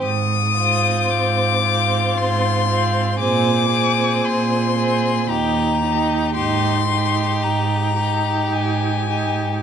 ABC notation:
X:1
M:3/4
L:1/8
Q:1/4=56
K:Ablyd
V:1 name="Violin"
e'2 d'2 c'2 | d'2 c'2 b2 | c'2 b2 a2 |]
V:2 name="Violin"
z F2 F2 F | A A2 A G G | G G2 G2 G |]
V:3 name="Viola"
z C2 C2 C | C C2 C E E | E E2 E2 E |]
V:4 name="Cello" clef=bass
A,,2 A,,2 A,,2 | B,,2 B,,2 E,,2 | A,,2 A,,2 A,,2 |]